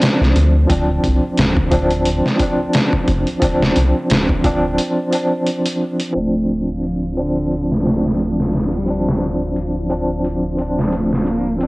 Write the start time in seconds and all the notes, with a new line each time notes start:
Already playing: F3 C4 D4
0.02 snare, closed hi-hat
0.21 C2, snare
0.36 D2, closed hi-hat
0.67 D1 F3 C4, kick, closed hi-hat
0.72 D4
1.04 C2, kick, closed hi-hat
1.37 D1, snare, closed hi-hat
1.57 kick
1.71 F3 C4 D4, kick, closed hi-hat
1.91 closed hi-hat
2.05 closed hi-hat
2.26 snare
2.38 F3 C4, kick, closed hi-hat
2.43 D4
2.73 snare, closed hi-hat
2.93 kick
3.08 F1, kick, closed hi-hat
3.27 closed hi-hat
3.40 D1 F3 C4, kick, closed hi-hat
3.44 D4
3.63 snare
3.76 C2, closed hi-hat
4.10 D1, snare, closed hi-hat
4.29 kick
4.44 F3 C4 D4, kick, closed hi-hat
4.78 closed hi-hat
5.11 F3 C4, closed hi-hat
5.15 D4
5.47 closed hi-hat
5.66 closed hi-hat
6.00 closed hi-hat
6.13 D1 F3 A3 C4 F4, closed hi-hat
6.18 D4
6.49 closed hi-hat
6.69 F3
6.83 closed hi-hat
7.17 D3 F3 C4 D4, closed hi-hat
7.36 closed hi-hat
7.51 closed hi-hat
7.71 A3, snare
7.83 F3 C4, snare, open hi-hat
7.88 D4
8.06 snare
8.19 closed hi-hat
8.40 snare
8.53 snare, closed hi-hat
8.73 G3, closed hi-hat
8.86 F3 C4, closed hi-hat
8.90 D4
9.08 snare
9.56 closed hi-hat
9.89 F3 C4 D4, closed hi-hat
10.24 closed hi-hat
10.57 F3 C4, closed hi-hat
10.61 D4
10.79 snare
10.92 A3, closed hi-hat
11.13 snare
11.27 A#3, closed hi-hat
11.58 F3 C4, closed hi-hat
11.63 D4